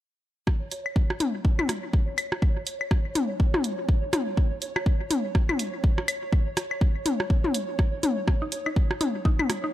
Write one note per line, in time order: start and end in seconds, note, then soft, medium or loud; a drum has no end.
0.47 9.73 C#5 medium
0.47 kick loud
0.47 percussion blips medium
0.71 closed hi-hat medium
0.86 claves soft
0.96 kick loud
1.10 percussion blips medium
1.20 closed hi-hat medium
1.20 mid tom medium
1.45 kick loud
1.59 mid tom medium
1.59 claves medium
1.69 closed hi-hat medium
1.69 percussion blips medium
1.93 kick loud
2.18 closed hi-hat medium
2.18 claves medium
2.32 percussion blips medium
2.42 kick loud
2.67 closed hi-hat medium
2.81 claves medium
2.91 kick loud
2.91 percussion blips medium
3.15 closed hi-hat medium
3.15 mid tom medium
3.40 kick loud
3.54 mid tom medium
3.54 percussion blips medium
3.64 closed hi-hat medium
3.89 kick loud
4.13 closed hi-hat medium
4.13 mid tom medium
4.13 percussion blips medium
4.37 kick loud
4.62 closed hi-hat medium
4.76 percussion blips medium
4.76 claves medium
4.86 kick loud
5.11 closed hi-hat medium
5.11 mid tom medium
5.35 kick loud
5.35 percussion blips medium
5.49 mid tom medium
5.49 claves medium
5.59 closed hi-hat medium
5.84 kick loud
5.98 percussion blips medium
6.08 closed hi-hat medium
6.08 claves medium
6.33 kick loud
6.57 closed hi-hat medium
6.57 percussion blips medium
6.71 claves medium
6.81 kick loud
7.06 closed hi-hat medium
7.06 mid tom medium
7.20 percussion blips medium
7.30 kick loud
7.44 mid tom medium
7.54 closed hi-hat medium
7.79 kick loud
7.79 percussion blips medium
8.03 closed hi-hat medium
8.03 mid tom medium
8.28 kick loud
8.28 percussion blips medium
8.42 8.44 D#4 medium
8.52 closed hi-hat medium
8.66 8.70 D#4 medium
8.66 claves soft
8.76 kick loud
8.91 percussion blips medium
9.01 9.04 D#4 medium
9.01 closed hi-hat medium
9.01 mid tom medium
9.25 9.30 D#4 medium
9.25 kick loud
9.39 mid tom medium
9.39 claves medium
9.50 closed hi-hat medium
9.50 percussion blips medium
9.64 9.66 D#4 medium